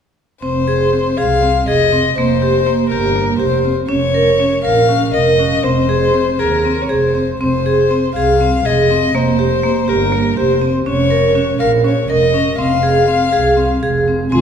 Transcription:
0.42 F1 C4 C5
0.68 G#4
0.93 C4
1.17 C2 G#4 F5
1.43 C4
1.68 F1 G#4 D#5
1.92 C4
2.17 F1 A#3 C5
2.42 G4
2.66 A#3
2.90 G1 G4 A#4
3.16 A#3
3.39 F1 G4 C5
3.65 C4
3.89 F1 C#4 C#5
4.14 A#4
4.40 C#4
4.64 A#1 A#4 F5
4.89 C#4
5.14 F1 A#4 D#5
5.39 C#4
5.63 F1 C4 C5
5.89 G#4
6.14 C4
6.39 D#2 G#4 A#4
6.65 C4
6.82 C#5
6.89 F1 G#4 C5
7.15 C4
7.39 F1 C4 C5
7.66 G#4
7.91 C4
8.15 C2 G#4 F5
8.41 C4
8.65 F1 G#4 D#5
8.91 C4
9.14 F1 A#3 C5
9.39 G4
9.63 A#3
9.88 G1 G4 A#4
10.12 A#3
10.37 F1 G4 C5
10.61 C4
10.86 F1 C#4 C#5
11.11 A#4
11.35 C#4
11.60 A#1 A#4 F5
11.84 C#4 C#5
12.09 F1 A#4 D#5
12.34 C#4
12.58 F1 C4 F5
12.83 G#4
13.08 C4
13.33 C2 G#4
13.57 C4
13.83 F1 G#4
14.08 C4
14.32 F1 D#3 G#3 C4 F4 G#4

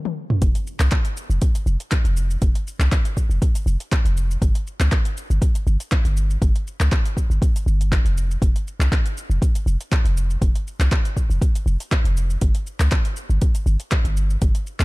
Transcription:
0.05 high tom
0.30 mid tom
0.42 F1, kick, closed hi-hat, shaker
0.55 closed hi-hat, shaker
0.67 shaker
0.80 C2, clap, shaker
0.91 kick, clap, closed hi-hat, shaker
1.05 closed hi-hat, shaker
1.17 shaker
1.30 F1, shaker
1.42 kick, closed hi-hat, shaker
1.55 closed hi-hat, shaker
1.66 F1, shaker
1.80 closed hi-hat, shaker
1.91 kick, clap, closed hi-hat, shaker
2.05 F1, closed hi-hat, shaker
2.17 shaker
2.30 shaker
2.42 F1, kick, closed hi-hat, shaker
2.55 closed hi-hat, shaker
2.67 shaker
2.79 C2, clap, shaker
2.92 kick, clap, closed hi-hat, shaker
3.05 closed hi-hat, shaker
3.17 kick, shaker
3.30 F1, shaker
3.42 kick, closed hi-hat, shaker
3.55 closed hi-hat, shaker
3.66 F1, shaker
3.80 closed hi-hat, shaker
3.92 kick, clap, closed hi-hat, shaker
4.05 F1, closed hi-hat, shaker
4.17 shaker
4.31 shaker
4.42 G1, kick, closed hi-hat, shaker
4.55 closed hi-hat, shaker
4.67 shaker
4.80 C#2, clap, shaker
4.92 kick, clap, closed hi-hat, shaker
5.05 closed hi-hat, shaker
5.17 shaker
5.30 G1, shaker
5.42 kick, closed hi-hat, shaker
5.55 closed hi-hat, shaker
5.67 G1, shaker
5.80 closed hi-hat, shaker
5.92 kick, clap, closed hi-hat, shaker
6.05 G1, closed hi-hat, shaker
6.17 shaker
6.30 shaker
6.42 G1, kick, closed hi-hat, shaker
6.56 closed hi-hat, shaker
6.67 shaker
6.80 C#2, clap, shaker
6.92 kick, clap, closed hi-hat, shaker
7.05 closed hi-hat, shaker
7.17 kick, shaker
7.30 G1, shaker
7.42 kick, closed hi-hat, shaker
7.56 closed hi-hat, shaker
7.66 G1, shaker
7.81 closed hi-hat, shaker
7.92 kick, clap, closed hi-hat, shaker
8.05 F1, closed hi-hat, shaker
8.17 shaker
8.31 shaker
8.42 F1, kick, closed hi-hat, shaker
8.56 closed hi-hat, shaker
8.68 shaker
8.80 C2, clap, shaker
8.92 kick, clap, closed hi-hat, shaker
9.06 closed hi-hat, shaker
9.18 shaker
9.30 F1, shaker
9.42 kick, closed hi-hat, shaker
9.55 closed hi-hat, shaker
9.66 F1, shaker
9.81 closed hi-hat, shaker
9.92 kick, clap, closed hi-hat, shaker
10.05 F1, closed hi-hat, shaker
10.17 shaker
10.30 shaker
10.41 F1, kick, closed hi-hat, shaker
10.55 closed hi-hat, shaker
10.67 shaker
10.80 C2, clap, shaker
10.92 kick, clap, closed hi-hat, shaker
11.05 closed hi-hat, shaker
11.17 kick, shaker
11.30 F1, shaker
11.42 kick, closed hi-hat, shaker
11.55 closed hi-hat, shaker
11.66 F1, shaker
11.80 closed hi-hat, shaker
11.92 kick, clap, closed hi-hat, shaker
12.04 F1, closed hi-hat, shaker
12.17 shaker
12.30 shaker
12.41 G1, kick, closed hi-hat, shaker
12.55 closed hi-hat, shaker
12.67 shaker
12.80 C#2, clap, shaker
12.92 kick, clap, closed hi-hat, shaker
13.05 closed hi-hat, shaker
13.17 shaker
13.30 G1, shaker
13.42 kick, closed hi-hat, shaker
13.55 closed hi-hat, shaker
13.66 G1, shaker
13.80 closed hi-hat, shaker
13.91 kick, clap, closed hi-hat, shaker
14.05 G1, closed hi-hat, shaker
14.17 shaker
14.30 shaker
14.42 G1, kick, closed hi-hat, shaker
14.55 closed hi-hat, shaker
14.67 shaker
14.80 C#2, clap, shaker

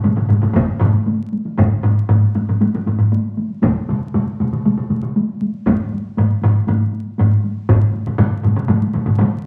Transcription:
0.04 taiko low-mid, taiko mid, taiko high
0.16 taiko low-mid, taiko mid
0.29 taiko low-mid, taiko mid, taiko high
0.42 taiko low-mid, taiko mid, taiko high
0.54 taiko, taiko low-mid, taiko mid, taiko high
0.79 taiko low-mid, taiko mid, taiko high
0.94 taiko high
1.06 taiko high
1.33 taiko high
1.46 taiko high
1.58 taiko, taiko low-mid, taiko high
1.72 taiko high
1.83 taiko low-mid, taiko high
1.98 taiko high
2.09 taiko low-mid, taiko high
2.23 taiko high
2.35 taiko low-mid, taiko high
2.48 taiko low-mid, taiko high
2.61 taiko low-mid, taiko high
2.74 taiko low-mid, taiko high
2.86 taiko low-mid, taiko high
2.99 taiko low-mid, taiko high
3.12 taiko high
3.24 taiko high
3.37 taiko high
3.50 taiko high
3.62 taiko, taiko mid, taiko high
3.76 taiko high
3.88 taiko mid, taiko high
4.02 taiko high
4.14 taiko mid, taiko high
4.27 taiko high
4.40 taiko mid, taiko high
4.52 taiko mid, taiko high
4.65 taiko mid, taiko high
4.77 taiko mid, taiko high
4.90 taiko mid, taiko high
5.02 taiko mid, taiko high
5.16 taiko high
5.29 taiko high
5.41 taiko high
5.54 taiko high
5.67 taiko, taiko low-mid, taiko high
5.80 taiko high
5.92 taiko high
6.05 taiko high
6.17 taiko low-mid, taiko high
6.30 taiko high
6.42 taiko low-mid, taiko high
6.56 taiko high
6.67 taiko low-mid, taiko high
6.80 taiko high
6.93 taiko high
7.06 taiko high
7.18 taiko low-mid, taiko high
7.31 taiko high
7.44 taiko high
7.57 taiko high
7.69 taiko, taiko low-mid, taiko mid, taiko high
7.81 taiko high
7.93 taiko high
8.07 taiko low-mid, taiko mid, taiko high
8.18 taiko low-mid, taiko mid, taiko high
8.32 taiko high
8.43 taiko low-mid, taiko mid, taiko high
8.56 taiko low-mid, taiko mid, taiko high
8.68 taiko low-mid, taiko mid, taiko high
8.82 taiko high
8.94 taiko low-mid, taiko mid, taiko high
9.06 taiko low-mid, taiko mid, taiko high
9.19 taiko low-mid, taiko mid, taiko high

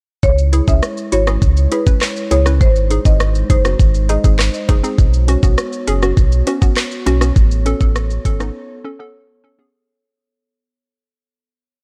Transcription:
0.23 C#2 G#3 E4 C#5, kick, shaker
0.38 shaker
0.53 E4 G#4, closed hi-hat, high bongo, shaker
0.68 C#2 C#4 E4 G#4 E5, kick, shaker
0.83 cross-stick, shaker
0.97 shaker
1.12 G#1 E4 F#4 C#5, closed hi-hat, shaker
1.27 C#4 E4 G#4, cross-stick, shaker
1.42 C#2, kick, shaker
1.57 shaker
1.71 E4 G#4 B4, closed hi-hat, high bongo, shaker
1.86 C#4 E4 B4, kick, shaker
2.01 cross-stick, clap, shaker
2.16 shaker
2.31 C#2 E4 G#4 C#5, closed hi-hat, high bongo, low bongo, shaker
2.46 C#4 E4 B4, cross-stick, shaker
2.61 G#1 G#3 D#4 C5, kick, shaker
2.76 shaker
2.90 D#4 G#4, closed hi-hat, high bongo, shaker
3.05 G#1 C4 D#4 F#4 D#5, kick, shaker
3.20 cross-stick, shaker
3.35 shaker
3.50 F#1 D#4 G#4 C5, kick, closed hi-hat, shaker
3.65 C4 D#4 F#4, cross-stick, shaker
3.79 G#1, kick, shaker
3.94 shaker
4.09 D#4 G#4 D#5, closed hi-hat, high bongo, shaker
4.24 G#1 C4 D#4 G#4, kick, shaker
4.39 cross-stick, clap, shaker
4.54 shaker
4.69 F#1 D#4 G#4, kick, closed hi-hat, high bongo, low bongo, shaker
4.83 C4 D#4 G#4, shaker
4.98 B1 B3 F#4 C#5, kick, shaker
5.13 shaker
5.28 C#4 F#4, closed hi-hat, high bongo, shaker
5.43 B1 B3 C#4 F#4, kick, shaker
5.58 cross-stick, shaker
5.73 shaker
5.87 F#1 C#4 G#4, closed hi-hat, shaker
6.02 B3 C#4 F#4, cross-stick, shaker
6.17 B1, kick, shaker
6.32 shaker
6.47 C#4 F#4, closed hi-hat, high bongo, shaker
6.62 B3 C#4 F#4, kick, shaker
6.77 cross-stick, clap, shaker
6.91 shaker
7.06 B1 C#4 F#4, closed hi-hat, high bongo, low bongo, shaker
7.21 B3 C#4 F#4, cross-stick, shaker
7.36 A1 A4, kick, shaker
7.51 shaker
7.66 C#4 A4, closed hi-hat, high bongo, shaker
7.80 A1 B3 C#4 A4, kick, shaker
7.96 cross-stick, shaker
8.10 shaker
8.25 G#1 C#4 A4, kick, closed hi-hat, shaker
8.40 B3 C#4 D#4, cross-stick, shaker
8.84 C#4 A4
8.99 B3 C#4 A4
9.44 C#4 A4
9.59 B3 C#4 G#4

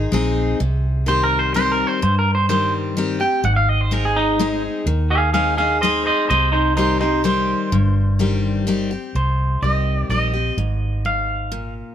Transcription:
Already playing: D#4 G#4 C5
0.12 A#1 G#3 C4 D#4 G#4
0.60 C2 C3
1.06 D#3 G3 C4 G4 C5
1.24 A#4
1.39 C5
1.54 D#3 G3 C4 G4 C5
1.72 A#4
1.87 C5
2.02 G2 C5
2.19 A#4
2.35 C5
2.49 D#3 G3 C4 G4 C5
2.97 D#3 G3 C4 G4
3.20 C4 G4 G5
3.44 G#1 G#2 F#5
3.56 F5
3.69 D#5
3.81 C5
3.91 G#3 C4 D#4 G#4 A#4
4.05 G#4
4.16 D#4
4.39 G#3 C4 D#4 G#4
4.86 D#2 D#3
5.10 G#4 F5
5.34 G#3 C4 D#4 G#4 F5
5.57 D#4 G#4 F5
5.81 G#3 C4 D#4 G#4 C5 D#5
6.06 C5 D#5
6.29 C2 C3 C5 D#5
6.52 D#4 C5
6.77 D#3 G3 C4 D#4 G4 C5
7.00 C4 D#4 G4 C5
7.24 D#3 G3 C4 G4 C5
7.72 G1 G2
8.19 D#3 G3 C4 G4
8.67 D#3 G3 C4 G4
8.91 C4 G4
9.15 C2 C3 C5
9.62 C2 D#3 G3 C4 G4 D#5
10.09 A#1 D#3 G3 C4 G4 D#5
10.33 C4 G4
10.57 G#1 G#2
11.05 G#2 F5
11.52 A#2

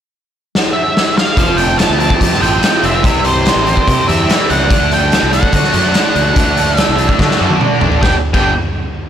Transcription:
0.55 snare
0.73 E5
0.97 snare
1.18 F5, snare
1.37 F1 F2 C3 F3 A3 C4 F4, kick, closed hi-hat
1.47 F1
1.57 A3 G5, closed hi-hat
1.78 A3 A5, snare, closed hi-hat
1.89 D2
1.99 C4 A5, closed hi-hat
2.10 kick
2.20 F2 G4, kick, closed hi-hat
2.34 snare
2.41 A1 F2 C3 F3 A3 C4 F4 G5, closed hi-hat
2.61 F2 C3 F3 A3 C4 F4, snare, closed hi-hat
2.83 F1 C4 E5, closed hi-hat
3.04 C2 C3 E3 G3 C4 E4, kick, closed hi-hat
3.14 C2
3.24 E3 C5, closed hi-hat
3.45 G3, snare, closed hi-hat
3.56 A1
3.66 C4, closed hi-hat
3.77 kick
3.87 C3 G4, kick, closed hi-hat
4.08 E2 C3 E3 G3 C4 E4 E5, closed hi-hat
4.28 C3 E3 G3 C4 E4, snare, closed hi-hat
4.50 C#2 C4 F#5, closed hi-hat
4.70 D2 D3 A3 D4 F#4, kick, closed hi-hat
4.81 D2
4.91 A3 G5, closed hi-hat
5.12 A3, snare, closed hi-hat
5.23 C2
5.33 D4 F#5, closed hi-hat
5.43 kick
5.53 D3 F#4, kick, closed hi-hat
5.64 snare
5.73 F#2 D3 A3 D4 F#4, closed hi-hat
5.94 D3 A3 D4 F#4, snare, closed hi-hat
6.15 D2 D4, closed hi-hat
6.36 D2 D3 A3 D4 F#4, kick, closed hi-hat
6.47 D2
6.57 A3, closed hi-hat
6.77 A3 E5, snare, closed hi-hat
6.89 C2
6.98 D4, closed hi-hat
7.09 kick
7.19 D3 F#4, kick, snare
7.31 snare
7.41 F#2 D3 A3 D4 F#4
7.50 high tom
7.61 D3 A3 D4 F#4, mid tom
7.81 A1 D4, floor tom
7.92 floor tom
8.02 G1 G2 D3 G3 B3 D4 G4 G5, kick, snare
8.33 G1 G2 D3 G3 B3 D4 G4 G5, kick, crash

